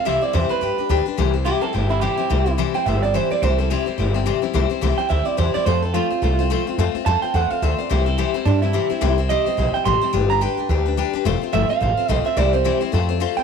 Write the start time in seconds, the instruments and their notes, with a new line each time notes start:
0.05 upright bass C2, steel-string acoustic guitar C3 E3 G3 C4 E4 C5, clean electric guitar E5
0.21 steel-string acoustic guitar G3 C4 E4 C5, clean electric guitar D5
0.33 upright bass E2, steel-string acoustic guitar C3 E3 G3 C4 E4 C5, clean electric guitar C5
0.49 steel-string acoustic guitar G3 C4 E4 C5, clean electric guitar B4, muted upright bass stroke
0.61 upright bass G2, steel-string acoustic guitar G3 D4 G4 B4
0.78 steel-string acoustic guitar D4 G4 B4, muted upright bass stroke
0.89 upright bass D2, steel-string acoustic guitar G3 D4 G4 B4
1.06 steel-string acoustic guitar D4 G4 B4
1.17 upright bass C2, steel-string acoustic guitar C3 E3 G3 C4 E4 C5
1.34 steel-string acoustic guitar G3 C4 E4 C5
1.45 steel-string acoustic guitar C3 E3 G3 C4 E4 C5, clean electric guitar G4
1.61 steel-string acoustic guitar G3 C4 E4 C5, clean electric guitar A4, muted upright bass stroke
1.73 upright bass G1, steel-string acoustic guitar G3 C4 E4 C5, clean electric guitar G4
1.89 steel-string acoustic guitar G3 C4 E4 C5, clean electric guitar E4
2.01 steel-string acoustic guitar C3 E3 G3 C4 E4 C5, clean electric guitar G4
2.17 steel-string acoustic guitar G3 C4 E4 C5, muted upright bass stroke
2.30 upright bass C2, steel-string acoustic guitar C3 E3 G3 C4 E4 C5
2.46 steel-string acoustic guitar G3 C4 E4 C5
2.58 steel-string acoustic guitar C3 E3 G3 C4 E4 C5
2.74 steel-string acoustic guitar G3 C4 E4 C5, clean electric guitar G5, muted upright bass stroke
2.86 upright bass G1, steel-string acoustic guitar G3 C4 E4 C5, clean electric guitar E5
3.02 steel-string acoustic guitar G3 C4 E4 C5, clean electric guitar D5
3.14 steel-string acoustic guitar C3 E3 G3 C4 E4 C5, clean electric guitar C5
3.30 steel-string acoustic guitar G3 C4 E4 C5, clean electric guitar D5, muted upright bass stroke
3.42 upright bass C2, steel-string acoustic guitar C3 E3 G3 C4 E4 C5, clean electric guitar C5
3.58 steel-string acoustic guitar G3 C4 E4 C5, clean electric guitar A4
3.70 steel-string acoustic guitar C3 E3 G3 C4 E4 C5, clean electric guitar G4
3.86 steel-string acoustic guitar G3 C4 E4 C5, muted upright bass stroke
3.98 upright bass G1, steel-string acoustic guitar G3 C4 E4 C5
4.14 steel-string acoustic guitar G3 C4 E4 C5
4.26 steel-string acoustic guitar C3 E3 G3 C4 E4 C5
4.42 steel-string acoustic guitar G3 C4 E4 C5, muted upright bass stroke
4.54 upright bass C2, steel-string acoustic guitar C3 E3 G3 C4 E4 C5
4.70 steel-string acoustic guitar G3 C4 E4 C5
4.81 upright bass C2, steel-string acoustic guitar C3 E3 G3 C4 E4 C5
4.98 steel-string acoustic guitar G3 C4 E4 C5, clean electric guitar G5
5.09 upright bass D2, steel-string acoustic guitar G3 C4 E4 C5, clean electric guitar E5
5.25 steel-string acoustic guitar G3 C4 E4 C5, clean electric guitar D5
5.37 upright bass E2, steel-string acoustic guitar C3 E3 G3 C4 E4 C5, clean electric guitar C5
5.54 steel-string acoustic guitar G3 C4 E4 C5, clean electric guitar D5, muted upright bass stroke
5.65 upright bass F2, steel-string acoustic guitar F3 A3 C4 F4 C5, clean electric guitar C5
5.82 steel-string acoustic guitar C4 F4 C5, clean electric guitar A4
5.94 steel-string acoustic guitar F3 A3 C4 F4 C5, clean electric guitar F4
6.10 steel-string acoustic guitar C4 F4 C5, muted upright bass stroke
6.22 upright bass C2, steel-string acoustic guitar A3 C4 F4 C5
6.39 steel-string acoustic guitar C4 F4 C5
6.50 steel-string acoustic guitar F3 A3 C4 F4 C5
6.66 steel-string acoustic guitar C4 F4 C5, muted upright bass stroke
6.78 upright bass F2, steel-string acoustic guitar F3 A3 C4 F4 C5
6.94 steel-string acoustic guitar C4 F4 C5, muted upright bass stroke
7.06 upright bass F2, steel-string acoustic guitar F3 A3 C4 F4 C5, clean electric guitar A5
7.22 steel-string acoustic guitar C4 F4 C5, clean electric guitar G5, muted upright bass stroke
7.34 upright bass E2, steel-string acoustic guitar A3 C4 F4 C5, clean electric guitar F#5
7.50 steel-string acoustic guitar C4 F4 C5, clean electric guitar F5, muted upright bass stroke
7.62 upright bass D2, steel-string acoustic guitar F3 A3 C4 F4 C5, clean electric guitar E5
7.78 steel-string acoustic guitar C4 F4 C5, clean electric guitar D5, muted upright bass stroke
7.89 upright bass C2, steel-string acoustic guitar C3 E3 G3 C4 E4 C5, clean electric guitar C5
8.06 steel-string acoustic guitar G3 C4 E4 C5, clean electric guitar A4
8.18 steel-string acoustic guitar C3 E3 G3 C4 E4 C5, clean electric guitar G4
8.34 steel-string acoustic guitar G3 C4 E4 C5, clean electric guitar E4
8.45 upright bass G2, steel-string acoustic guitar G3 C4 E4 C5, clean electric guitar D4
8.62 steel-string acoustic guitar G3 C4 E4 C5, clean electric guitar E4
8.73 steel-string acoustic guitar C3 E3 G3 C4 E4 C5
8.90 steel-string acoustic guitar G3 C4 E4 C5, muted upright bass stroke
9.01 upright bass C2, steel-string acoustic guitar C3 E3 G3 C4 E4 C5
9.18 steel-string acoustic guitar G3 C4 E4 C5
9.29 steel-string acoustic guitar C3 E3 G3 C4 E4 C5, clean electric guitar D#5
9.46 steel-string acoustic guitar G3 C4 E4 C5, muted upright bass stroke
9.57 upright bass A#1, steel-string acoustic guitar G3 C4 E4 C5
9.74 steel-string acoustic guitar G3 C4 E4 C5, clean electric guitar G5, muted upright bass stroke
9.85 upright bass A1, steel-string acoustic guitar C3 E3 G3 C4 E4 C5, clean electric guitar C6
10.01 steel-string acoustic guitar G3 C4 E4 C5, muted upright bass stroke
10.13 upright bass G1, steel-string acoustic guitar G3 D4 G4 B4
10.29 steel-string acoustic guitar D4 G4 B4, clean electric guitar A#5
10.41 steel-string acoustic guitar G3 D4 G4 B4, clean electric guitar G5
10.57 steel-string acoustic guitar D4 G4 B4, muted upright bass stroke
10.69 upright bass D2, steel-string acoustic guitar G3 D4 G4 B4
10.86 steel-string acoustic guitar D4 G4 B4
10.97 steel-string acoustic guitar G3 D4 G4 B4
11.13 steel-string acoustic guitar D4 G4 B4, muted upright bass stroke
11.25 upright bass F1, steel-string acoustic guitar F3 A3 C4 F4 C5
11.42 steel-string acoustic guitar C4 F4 C5
11.53 upright bass G1, steel-string acoustic guitar F3 A3 C4 F4 C5, clean electric guitar E5
11.69 steel-string acoustic guitar C4 F4 C5, clean electric guitar F5, muted upright bass stroke
11.80 upright bass A1, steel-string acoustic guitar A3 C4 F4 C5
11.97 steel-string acoustic guitar C4 F4 C5, muted upright bass stroke
12.08 upright bass A#1, steel-string acoustic guitar F3 A3 C4 F4 C5, clean electric guitar D#5
12.25 steel-string acoustic guitar C4 F4 C5, clean electric guitar E5, muted upright bass stroke
12.37 upright bass C2, steel-string acoustic guitar C3 E3 G3 C4 E4 C5, clean electric guitar D5
12.53 steel-string acoustic guitar G3 C4 E4 C5, clean electric guitar C5
12.64 steel-string acoustic guitar C3 E3 G3 C4 E4 C5
12.81 steel-string acoustic guitar G3 C4 E4 C5, muted upright bass stroke
12.92 upright bass F2, steel-string acoustic guitar A3 C4 F4 C5
13.09 steel-string acoustic guitar C4 F4 C5
13.20 steel-string acoustic guitar F3 A3 C4 F4 C5
13.37 steel-string acoustic guitar C4 F4 C5, clean electric guitar G5, muted upright bass stroke